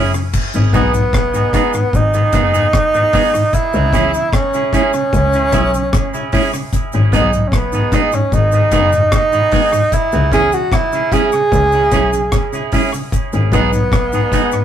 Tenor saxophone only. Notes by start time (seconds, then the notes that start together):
0.76 B3
1.96 D#4
3.55 E4
4.34 C#4
4.76 C#4
7.15 D#4
7.48 C#4
7.55 B3
7.95 D#4
8.15 C#4
8.34 D#4
9.14 D#4
9.94 E4
10.34 G#4
10.54 F#4
10.73 E4
11.12 G#4
13.54 B3